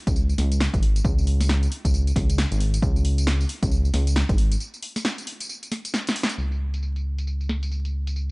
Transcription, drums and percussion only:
0.07 kick, closed hi-hat, tambourine
0.16 tambourine
0.29 tambourine
0.38 snare, open hi-hat
0.52 closed hi-hat, tambourine
0.60 snare, tambourine
0.74 kick, closed hi-hat, tambourine
0.83 open hi-hat
0.96 closed hi-hat, tambourine
1.05 kick, tambourine
1.18 tambourine
1.27 open hi-hat
1.41 snare, open hi-hat, tambourine
1.49 snare, tambourine
1.63 closed hi-hat, tambourine
1.72 open hi-hat
1.85 kick, closed hi-hat, tambourine
1.94 tambourine
2.07 closed hi-hat, tambourine
2.16 kick, snare, open hi-hat
2.30 closed hi-hat, tambourine
2.38 snare, tambourine
2.52 closed hi-hat, tambourine
2.60 open hi-hat
2.74 closed hi-hat, tambourine
2.82 kick, tambourine
2.96 tambourine
3.05 open hi-hat
3.18 closed hi-hat, tambourine
3.27 snare
3.40 tambourine
3.49 open hi-hat
3.63 kick, closed hi-hat, tambourine
3.71 tambourine
3.85 tambourine
3.94 snare, open hi-hat
4.07 closed hi-hat, tambourine
4.16 snare, tambourine
4.29 kick, closed hi-hat, tambourine
4.38 open hi-hat
4.52 closed hi-hat, tambourine
4.60 tambourine
4.74 tambourine
4.83 open hi-hat
4.96 snare, open hi-hat, tambourine
5.05 snare, tambourine
5.18 closed hi-hat, tambourine
5.27 open hi-hat
5.40 closed hi-hat, tambourine
5.49 tambourine
5.63 closed hi-hat, tambourine
5.72 snare, open hi-hat
5.85 closed hi-hat, tambourine
5.94 snare, tambourine
6.07 snare, closed hi-hat, tambourine
6.16 open hi-hat
6.23 snare
6.29 closed hi-hat, tambourine
6.38 tambourine
6.52 tambourine
6.74 closed hi-hat, tambourine
6.83 tambourine
6.96 closed hi-hat, tambourine
7.18 closed hi-hat, tambourine
7.27 tambourine
7.41 tambourine
7.49 snare
7.63 closed hi-hat, tambourine
7.71 tambourine
7.85 closed hi-hat, tambourine
8.07 closed hi-hat, tambourine
8.16 tambourine

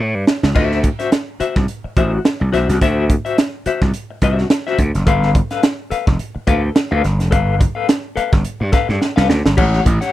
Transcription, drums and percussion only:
0.27 snare
0.43 snare
0.55 kick, crash
0.72 snare
0.84 kick, closed hi-hat
1.00 snare, closed hi-hat
1.12 snare, closed hi-hat
1.40 closed hi-hat
1.56 kick, snare
1.68 closed hi-hat
1.97 kick, closed hi-hat
2.25 snare, closed hi-hat
2.54 snare, closed hi-hat
2.70 snare, closed hi-hat
2.81 kick, closed hi-hat
3.10 kick, closed hi-hat
3.26 closed hi-hat
3.38 snare, closed hi-hat
3.66 closed hi-hat
3.82 kick, snare
3.94 closed hi-hat
4.22 kick, closed hi-hat
4.38 snare
4.50 snare, closed hi-hat
4.67 snare
4.79 kick, closed hi-hat
4.95 snare, closed hi-hat
5.07 kick, closed hi-hat
5.23 snare
5.35 kick, closed hi-hat
5.51 snare, closed hi-hat
5.63 snare, closed hi-hat
5.91 closed hi-hat
6.07 kick, snare
6.19 closed hi-hat
6.47 kick, closed hi-hat
6.76 snare, closed hi-hat
7.04 snare, closed hi-hat
7.20 snare, closed hi-hat
7.32 kick, closed hi-hat
7.61 kick, closed hi-hat
7.89 snare, closed hi-hat
8.17 closed hi-hat
8.33 kick, snare
8.45 closed hi-hat
8.72 kick, snare, closed hi-hat
8.89 snare
9.02 snare
9.17 snare
9.30 snare
9.46 snare
9.57 kick, crash
9.74 snare
9.86 kick, closed hi-hat
10.02 snare, closed hi-hat

